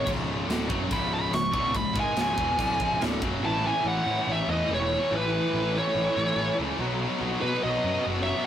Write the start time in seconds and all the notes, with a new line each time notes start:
0.07 C#1 C#2 G#2 C#3, kick, crash
0.47 D1 D2 A2 D3, snare, crash
0.68 F#1 F#2 C#3 F#3, kick
0.88 C#1 C#2 G#2 C#3, kick
0.93 B5, crash
1.14 B5
1.31 C#1 C#2 G#2 C#6, snare, crash
1.51 D1 D2 A2 D3 C#6, kick
1.74 C#1 C#2 G#2 B5, kick, crash
1.95 G#1 G#2 D#3 G#3, kick
2.00 G#5
2.16 C#1 C#2 G#2 C#3, snare, crash
2.22 G#5
2.37 E1 E2 B2 E3, kick
2.57 D1 D2 A2 D3, kick, crash
2.80 C#1 C#2 G#2 C#3, kick
3.01 D1 D2 A2 D3, snare, crash
3.20 F#1 F#2 C#3 F#3, kick
3.43 A1 A2 E3 A3 E5 A5
3.50 A2 E3
3.57 A2 E3
3.64 A2 E3 A3 E5 G#5
3.73 A2 E3
3.81 A1 A2 E3
3.86 A2 E3 A3 C#5 F#5
3.95 A2 E3
4.03 A2 E3 A3
4.10 A2 E3
4.19 A2 E3
4.26 A1 A2 E3 A3 C#5
4.32 A2 E3 E5
4.41 A2 E3
4.48 E2 A2 E3 A3 B4 D#5
4.57 A2 E3
4.63 A2 E3
4.69 E1 A2 E3 A3 A4
4.74 C#5
4.79 A2 E3
4.85 A2 E3
4.92 A2 E3 A3
5.02 A2 E3
5.10 A1 A2 E3 A3 E4
5.16 A2 E3 B4
5.25 A2 E3
5.32 A2 E3 A3
5.40 A2 E3
5.49 A2 E3
5.53 A1 A2 E3 A3
5.63 A2 E3
5.72 A2 E3 A4
5.76 A2 E3 A3 C#5
5.87 A2 E3
5.94 A1 A2 E3 A3
6.02 A2 E3
6.09 A2 E3
6.17 A1 A2 E3 A3
6.25 A2 E3
6.33 A1 A2 E3
6.38 A2 E3 A3
6.47 A2 E3
6.55 A2 E3
6.59 C#2 A3
6.63 A2 E3
6.70 A2 E3
6.78 B1 B2 F#3 B3
6.86 B2 F#3
6.93 B2 F#3
7.00 B2 F#3 B3
7.08 B2 F#3
7.16 B2 F#3
7.21 B1 B2 B3
7.25 F#3
7.31 B2 F#3
7.39 B2 F#3 G#4 B4
7.44 B2 F#3 B3
7.53 B2 F#3
7.60 B1 B2 F#3 B3 B4 D#5
7.69 B2 F#3
7.77 B2 F#3
7.84 F#2 B2 F#3 B3
7.92 B2 F#3
7.99 B2 F#3
8.06 F#1 B2 F#3 B3
8.14 B2 F#3
8.22 B2 F#3 C#5 E5
8.28 B2 F#3 B3
8.36 B2 F#3
8.43 D#5